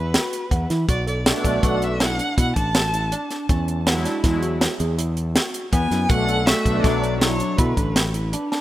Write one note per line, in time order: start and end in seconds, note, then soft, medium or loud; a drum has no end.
0.00 0.15 E2 loud
0.00 0.67 B4 medium
0.14 0.45 F#4 medium
0.14 snare loud
0.14 closed hi-hat medium
0.33 closed hi-hat medium
0.51 0.65 E2 medium
0.51 0.67 B3 medium
0.51 kick medium
0.51 closed hi-hat medium
0.70 0.84 E3 medium
0.70 0.85 E4 medium
0.70 snare soft
0.70 closed hi-hat medium
0.89 1.31 B1 medium
0.89 1.04 F#4 medium
0.89 1.06 D5 medium
0.89 kick loud
0.89 closed hi-hat medium
1.07 1.22 A4 medium
1.07 1.66 D5 medium
1.07 closed hi-hat medium
1.26 1.52 B2 medium
1.26 1.52 A3 medium
1.26 1.53 D4 medium
1.26 1.57 F#4 medium
1.26 snare loud
1.26 closed hi-hat medium
1.45 1.59 B1 medium
1.45 kick medium
1.45 closed hi-hat medium
1.63 2.19 B1 medium
1.63 1.76 B2 medium
1.63 1.77 A3 medium
1.63 1.77 D4 medium
1.63 1.94 F#4 medium
1.63 1.85 F#5 medium
1.63 kick medium
1.63 closed hi-hat medium
1.82 2.03 E5 medium
1.82 closed hi-hat medium
2.00 2.16 E4 medium
2.00 2.38 F#5 loud
2.00 snare medium
2.00 closed hi-hat medium
2.19 2.34 D4 medium
2.19 closed hi-hat medium
2.37 2.52 B2 medium
2.37 2.53 E4 medium
2.37 2.56 F#5 loud
2.37 kick loud
2.37 closed hi-hat medium
2.56 3.13 A1 medium
2.56 2.71 D4 medium
2.56 3.27 A5 loud
2.56 kick medium
2.56 closed hi-hat medium
2.75 2.90 F#4 medium
2.75 snare loud
2.75 closed hi-hat medium
2.93 3.09 E4 medium
2.93 closed hi-hat medium
3.12 3.27 D4 medium
3.12 closed hi-hat medium
3.31 3.46 D4 medium
3.31 snare soft
3.31 closed hi-hat soft
3.49 4.05 E2 medium
3.49 3.80 C#4 medium
3.49 kick loud
3.49 closed hi-hat medium
3.68 closed hi-hat soft
3.86 3.99 F#3 medium
3.86 4.00 G#3 medium
3.86 4.02 B3 medium
3.86 4.00 E4 medium
3.86 snare medium
3.86 closed hi-hat medium
4.05 4.21 D4 medium
4.05 snare soft
4.05 closed hi-hat medium
4.23 4.66 E2 medium
4.23 4.36 F#3 medium
4.23 4.37 G#3 medium
4.23 4.39 E4 medium
4.23 4.37 E4 medium
4.23 kick loud
4.23 snare soft
4.23 closed hi-hat medium
4.42 4.73 F#4 medium
4.42 closed hi-hat medium
4.61 snare medium
4.61 closed hi-hat medium
4.80 5.36 E2 medium
4.80 4.95 G#4 medium
4.80 closed hi-hat medium
4.98 5.29 E4 medium
4.98 closed hi-hat medium
5.17 closed hi-hat medium
5.35 5.66 F#4 medium
5.35 snare loud
5.35 closed hi-hat medium
5.54 closed hi-hat medium
5.73 5.87 E2 medium
5.73 5.88 B3 medium
5.73 6.10 B3 medium
5.73 6.10 G#5 loud
5.73 kick medium
5.73 closed hi-hat medium
5.91 6.05 F#2 medium
5.91 6.07 E4 medium
5.91 snare soft
5.91 closed hi-hat medium
6.08 6.52 B1 medium
6.08 6.23 B2 medium
6.08 6.45 A3 medium
6.08 6.23 A3 medium
6.08 6.24 D4 medium
6.08 6.25 F#4 medium
6.08 6.47 F#5 loud
6.08 kick loud
6.08 closed hi-hat medium
6.29 6.44 A4 medium
6.29 closed hi-hat medium
6.46 6.84 A3 medium
6.46 6.77 F#4 medium
6.46 6.84 E5 medium
6.46 snare loud
6.46 closed hi-hat medium
6.65 6.80 B1 medium
6.65 6.91 B2 medium
6.65 6.92 A3 medium
6.65 6.92 D4 medium
6.65 kick medium
6.65 closed hi-hat medium
6.83 7.40 B1 medium
6.83 7.19 F#3 medium
6.83 7.15 F#4 medium
6.83 7.20 D5 medium
6.83 kick loud
6.83 snare soft
6.83 closed hi-hat medium
7.04 closed hi-hat medium
7.20 7.56 F#3 medium
7.20 7.37 E4 medium
7.20 7.59 C#5 medium
7.20 snare medium
7.20 closed hi-hat medium
7.40 7.55 D4 medium
7.40 closed hi-hat medium
7.57 7.73 B2 medium
7.57 7.96 D3 medium
7.57 7.74 E4 medium
7.57 7.95 B4 medium
7.57 kick loud
7.57 closed hi-hat medium
7.77 8.34 A1 medium
7.77 7.93 D4 medium
7.77 kick medium
7.77 closed hi-hat medium
7.96 8.11 F#4 medium
7.96 snare medium
7.96 closed hi-hat medium
8.14 8.30 E4 medium
8.14 closed hi-hat medium
8.33 8.49 D4 medium
8.33 closed hi-hat medium
8.52 8.61 D4 medium
8.52 snare soft